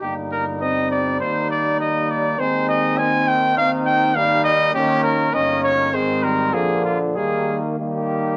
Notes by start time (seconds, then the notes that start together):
0.01 G1 G3 A#3 D#4 G4
0.32 A#4
0.61 C4 D#5
0.91 D5
1.20 D#2 A#3 D#4 C5
1.51 D5
1.80 A#3 D#5
2.11 D5
2.39 D#2 G#3 C4 D#4 C5
2.69 D#5
2.98 D#3 C4 G#5
3.28 G5
3.57 D#2 C4 D#4 F5
3.86 G5
4.15 G3 A#3 D#4 F5
4.44 D#5
4.74 D#2 D#3 A#3 C#4 G4
5.04 A#4
5.33 G1 D#3 A#3 C#4 D#5
5.63 C#5
5.93 G#1 D#3 G#3 C4 C5
6.23 G3 A#4
6.54 A#1 D3 F3 A#3 G#4
6.85 F4
7.16 D#2 D#3 G3 A#3 G#4
7.79 D#3 G3 A#3 G4